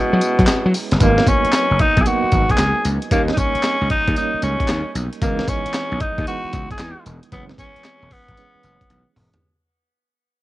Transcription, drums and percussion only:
0.21 closed hi-hat, tambourine
0.39 kick, closed hi-hat
0.47 snare, clap, closed hi-hat, tambourine
0.74 open hi-hat, tambourine
0.92 snare, closed hi-hat
1.00 kick, closed hi-hat, tambourine
1.18 snare
1.27 kick, closed hi-hat, tambourine
1.45 closed hi-hat
1.52 snare, clap, closed hi-hat, tambourine
1.79 kick, closed hi-hat
1.97 kick, closed hi-hat
2.06 closed hi-hat, tambourine
2.32 kick, closed hi-hat, tambourine
2.50 kick, closed hi-hat
2.58 snare, clap, closed hi-hat, tambourine
2.85 closed hi-hat, tambourine
3.02 closed hi-hat
3.11 kick, closed hi-hat, tambourine
3.28 snare
3.37 kick, closed hi-hat, tambourine
3.55 closed hi-hat
3.63 snare, clap, closed hi-hat, tambourine
3.90 kick, closed hi-hat
4.08 kick, closed hi-hat
4.16 closed hi-hat, tambourine
4.42 closed hi-hat, tambourine
4.60 kick, closed hi-hat
4.68 snare, clap, closed hi-hat, tambourine
4.95 closed hi-hat, tambourine
5.13 closed hi-hat
5.22 kick, closed hi-hat, tambourine
5.39 snare
5.48 kick, closed hi-hat, tambourine
5.66 closed hi-hat
5.74 snare, clap, closed hi-hat, tambourine
6.00 kick, closed hi-hat
6.18 kick, closed hi-hat
6.27 closed hi-hat, tambourine
6.53 kick, closed hi-hat, tambourine
6.71 kick, closed hi-hat
6.79 snare, clap, closed hi-hat, tambourine
7.06 closed hi-hat, tambourine
7.23 closed hi-hat
7.32 kick, closed hi-hat, tambourine
7.49 snare
7.58 kick, closed hi-hat, tambourine
7.76 closed hi-hat
7.84 snare, clap, closed hi-hat, tambourine
8.11 kick, open hi-hat
8.29 kick, closed hi-hat
8.37 closed hi-hat, tambourine
8.63 closed hi-hat, tambourine
8.81 kick, closed hi-hat
8.90 closed hi-hat, high tom
9.16 mid tom, open hi-hat
9.34 closed hi-hat, floor tom

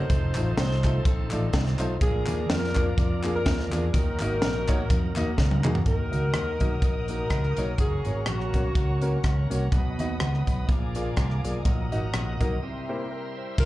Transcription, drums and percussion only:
0.10 kick, closed hi-hat
0.35 clap, closed hi-hat
0.58 snare, closed hi-hat
0.71 snare
0.84 kick, clap, closed hi-hat
1.05 kick, closed hi-hat
1.31 clap, closed hi-hat
1.53 kick, snare, closed hi-hat
1.66 snare
1.79 clap, closed hi-hat
2.01 kick, closed hi-hat
2.26 clap, closed hi-hat
2.50 snare, closed hi-hat
2.64 snare
2.75 kick, clap, closed hi-hat
2.98 kick, closed hi-hat
3.23 clap, closed hi-hat
3.46 kick, snare, closed hi-hat
3.59 snare
3.72 clap, closed hi-hat
3.94 kick, closed hi-hat
4.19 clap, closed hi-hat
4.42 snare, closed hi-hat
4.68 kick, clap, closed hi-hat
4.90 kick, closed hi-hat
5.16 clap, closed hi-hat
5.38 kick, snare
5.51 high tom
5.64 clap, mid tom
5.75 floor tom
5.86 kick, closed hi-hat
6.13 closed hi-hat
6.34 cross-stick, closed hi-hat
6.60 kick, closed hi-hat
6.82 kick, closed hi-hat
7.08 closed hi-hat
7.30 kick, cross-stick, closed hi-hat
7.43 cross-stick
7.57 closed hi-hat
7.78 kick, closed hi-hat
8.05 closed hi-hat
8.26 cross-stick, closed hi-hat
8.40 cross-stick
8.54 kick, closed hi-hat
8.75 kick, closed hi-hat
9.02 closed hi-hat
9.24 kick, cross-stick, closed hi-hat
9.51 closed hi-hat
9.72 kick, closed hi-hat
9.99 closed hi-hat
10.20 cross-stick, closed hi-hat
10.34 cross-stick
10.47 kick, closed hi-hat
10.69 kick, closed hi-hat
10.95 closed hi-hat
11.17 kick, cross-stick, closed hi-hat
11.30 cross-stick
11.45 closed hi-hat
11.65 kick, closed hi-hat
11.92 closed hi-hat
12.14 cross-stick, closed hi-hat
12.40 kick, closed hi-hat
13.58 kick, crash

